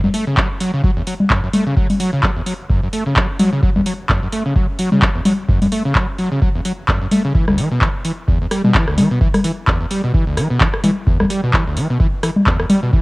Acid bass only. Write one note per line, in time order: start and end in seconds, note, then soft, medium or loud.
0.04 0.09 F#2 medium
0.14 0.25 A3 medium
0.27 0.35 C#3 medium
0.37 0.48 F#3 medium
0.60 0.71 F#3 loud
0.73 0.82 C#3 medium
0.84 0.91 F#3 loud
0.97 1.02 E2 medium
1.07 1.14 F#3 medium
1.30 1.41 F#2 loud
1.43 1.49 F#2 medium
1.53 1.64 A3 medium
1.67 1.75 C#3 medium
1.77 1.87 F#3 medium
2.00 2.11 F#3 loud
2.13 2.21 C#3 medium
2.23 2.30 F#3 loud
2.36 2.42 E2 medium
2.46 2.54 F#3 medium
2.70 2.80 F#2 loud
2.83 2.88 F#2 medium
2.93 3.04 A3 medium
3.06 3.14 C#3 medium
3.16 3.27 F#3 medium
3.39 3.50 F#3 loud
3.53 3.61 C#3 medium
3.63 3.70 F#3 loud
3.76 3.81 E2 medium
3.86 3.93 F#3 medium
4.09 4.20 F#2 loud
4.22 4.28 F#2 medium
4.32 4.43 A3 medium
4.46 4.54 C#3 medium
4.56 4.67 F#3 medium
4.79 4.90 F#3 loud
4.92 5.00 C#3 medium
5.02 5.09 F#3 loud
5.15 5.21 E2 medium
5.26 5.33 F#3 medium
5.49 5.60 F#2 loud
5.62 5.67 F#2 medium
5.72 5.83 A3 medium
5.85 5.93 C#3 medium
5.95 6.06 F#3 medium
6.19 6.29 F#3 loud
6.32 6.40 C#3 medium
6.42 6.49 F#3 loud
6.55 6.61 E2 medium
6.65 6.72 F#3 medium
6.88 6.99 F#2 loud
7.01 7.07 F#2 medium
7.12 7.22 A3 medium
7.25 7.33 C#3 medium
7.35 7.46 E3 medium
7.48 7.60 D2 medium
7.58 7.69 E3 loud
7.71 7.80 B2 medium
7.81 7.89 E3 loud
8.05 8.12 E3 medium
8.28 8.39 E2 loud
8.41 8.47 E2 medium
8.51 8.62 G3 medium
8.64 8.73 B2 medium
8.74 8.85 E3 medium
8.87 8.99 D2 medium
8.98 9.08 E3 loud
9.11 9.19 B2 medium
9.21 9.28 E3 loud
9.44 9.51 E3 medium
9.67 9.78 E2 loud
9.80 9.86 E2 medium
9.91 10.01 G3 medium
10.04 10.12 B2 medium
10.14 10.25 E3 medium
10.27 10.39 D2 medium
10.37 10.48 E3 loud
10.50 10.59 B2 medium
10.60 10.68 E3 loud
10.84 10.91 E3 medium
11.07 11.18 E2 loud
11.20 11.26 E2 medium
11.30 11.41 G3 medium
11.43 11.52 B2 medium
11.53 11.64 E3 medium
11.66 11.78 D2 medium
11.77 11.87 E3 loud
11.90 11.98 B2 medium
12.00 12.07 E3 loud
12.23 12.30 E3 medium
12.46 12.57 E2 loud
12.59 12.65 E2 medium
12.70 12.80 G3 medium
12.83 12.91 B2 medium
12.93 13.02 E3 medium